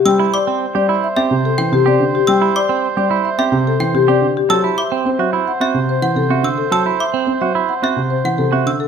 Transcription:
<<
  \new Staff \with { instrumentName = "Xylophone" } { \time 4/4 \key a \dorian \tempo 4 = 108 e'''16 r16 d'''16 r4 r16 e''16 r8 g''16 r4 | e'''16 r16 d'''16 r4 r16 e''16 r8 g''16 r4 | e'''16 r16 d'''16 r4 r16 e''16 r8 fis''16 r8 e'''16 r16 | e'''16 r16 d'''16 r4 r16 e''16 r8 fis''16 r8 e'''16 r16 | }
  \new Staff \with { instrumentName = "Marimba" } { \time 4/4 \key a \dorian g''16 r16 d''16 r8 d''16 r16 e''16 r8 a'16 r16 g'16 d''16 r16 g'16 | g''16 r16 d''16 r8 d''16 r16 e''16 r8 a'16 r16 g'16 d''16 r16 g'16 | a''16 r16 e''16 r16 c''16 e''16 r16 fis''16 r8 c''16 r16 a'16 e''16 r16 a'16 | a''16 r16 e''16 r16 c''16 e''16 r16 fis''16 r8 c''16 r16 a'16 e''16 r16 a'16 | }
  \new Staff \with { instrumentName = "Oboe" } { \time 4/4 \key a \dorian c''1~ | c''2.~ c''8. r16 | c''1~ | c''2.~ c''8. r16 | }
  \new Staff \with { instrumentName = "Clean electric guitar" } { \time 4/4 \key a \dorian r16 e'16 r16 c'16 r16 g'16 e'16 r16 g'16 r4 g'16 r8 | r16 e'16 r16 c'16 r16 g'16 e'16 r16 g'16 r4 g'16 r8 | a'16 e'16 r16 c'16 r16 fis'16 e'16 r16 fis'16 r4 fis'16 r8 | a'16 e'16 r16 c'16 r16 fis'16 e'16 r16 fis'16 r4 fis'16 r8 | }
  \new Staff \with { instrumentName = "Grand piano" } { \clef bass \time 4/4 \key a \dorian g16 r4 g16 r8 c'16 c16 r16 e16 c16 c'16 d16 r16 | g16 r4 g16 r8 c'16 c16 r16 e16 c16 c'16 d16 r16 | fis16 r8. c'16 fis16 r8 c'16 c16 r16 e16 c16 c'16 d16 r16 | fis16 r8. c'16 fis16 r8 c'16 c16 r16 e16 c16 c'16 d16 r16 | }
>>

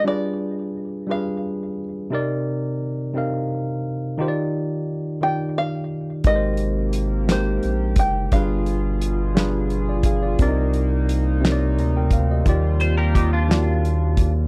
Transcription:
<<
  \new Staff \with { instrumentName = "Five-string banjo" } { \time 6/8 \key ees \major \tempo 4. = 58 d''4. f''4 r8 | r2. | r4. g''8 f''4 | ees''4. c''4 g''8 |
f''4 r2 | r2. | r2. | }
  \new Staff \with { instrumentName = "Clean electric guitar" } { \time 6/8 \key ees \major r2. | r2. | r2. | r2. |
r2. | r2. | r8 c''16 <g' bes'>16 <ees' g'>16 <d' f'>4. r16 | }
  \new Staff \with { instrumentName = "Tine electric piano" } { \time 6/8 \key ees \major << { r2. | r2. | r2. | r2. |
r2 r16 <f' d''>16 <aes' f''>16 <f' d''>16~ | <f' d''>16 r4. r16 <d'' bes''>16 <bes' g''>16 f''16 <g' ees''>16~ | <g' ees''>16 r2 r8. | } \\ { <g d' f' aes' b'>4 r8 <g d' f' aes' b'>4 r8 | <c c' ees' bes' d''>4 r8 <c c' ees' bes' f''>4 r8 | <ees ees' f' g' c'' d''>4 r8 <ees ees' f' g' d''>4 r8 | <aes ees' g' bes' ces'' c''>4 r8 <aes ees' g' bes' c''>4 r8 |
<g d' f' aes' b'>4 r8 <g d' f' aes' b'>4 r8 | <c c' d' ees' bes' d''>4 r8 <c c' ees' bes' des'' d''>4 r8 | <ees bes f' g' d''>4 r8 <ees bes f' ges' g' d''>4 r8 | } >> }
  \new Staff \with { instrumentName = "Analog synth pad" } { \time 6/8 \key ees \major << { r2. | r2. | r2. | <bes g'>2. |
<f' aes'>2. | <bes ees'>2. | <g f'>2. | } \\ { r2. | r2. | r2. | c2. |
b,2. | c2.~ | c2. | } >> }
  \new Staff \with { instrumentName = "Analog synth bass" } { \clef bass \time 6/8 \key ees \major r2. | r2. | r2. | aes,,2 bes,,8 ges,,8 |
g,,2. | c,2 d,8 d,8 | ees,2. | }
  \new DrumStaff \with { instrumentName = "Drums" } \drummode { \time 6/8 r4. r4. | r4. r4. | r4. r4. | <hh bd>8 hh8 hh8 <hh sn>8 hh8 <hh bd>8 |
<hh bd>8 hh8 hh8 <hh sn>8 hh8 <hh bd>8 | <hh bd>8 hh8 hh8 <hh sn>8 hh8 <hh bd>8 | <hh bd>8 hh8 <hh bd>8 <hh sn>8 hh8 <hh bd>8 | }
>>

